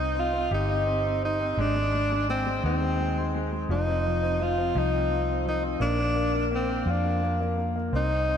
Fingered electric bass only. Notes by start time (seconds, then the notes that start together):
Already playing: C2
0.51 G1
1.57 G#1
2.64 D#2
3.69 F1
4.75 C2
5.80 A#1
6.86 F2
7.93 C2